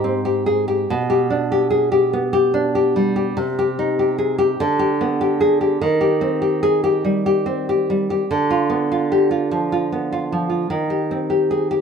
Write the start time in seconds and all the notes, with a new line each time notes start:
Already playing: G#2 G4
0.04 C4
0.25 G4
0.46 G#4
0.68 G4
0.90 B2
1.10 G4
1.30 D4
1.52 G4
1.70 G#4
1.92 G4
2.13 B3
2.33 G4
2.54 D4
2.75 G4
2.96 G3
3.16 G4
3.37 C3
3.59 G4
3.79 D#4
3.99 G4
4.18 G#4
4.38 G4
4.60 D3
4.79 G4
5.01 B3
5.21 G4
5.41 G#4
5.61 G4
5.81 D#3
6.01 G4
6.21 C4
6.42 G4
6.63 G#4
6.84 G4
7.04 G3
7.26 G4
7.46 C4
7.69 G4
7.90 G3
8.10 G4
8.31 D3
8.50 F4
8.70 B3
8.92 F4
9.12 G4
9.31 F4
9.51 F3
9.72 F4
9.92 B3
10.12 F4
10.32 F3
10.50 F4
10.70 D#3
10.90 G4
11.11 C4
11.30 G4
11.51 G#4
11.71 G4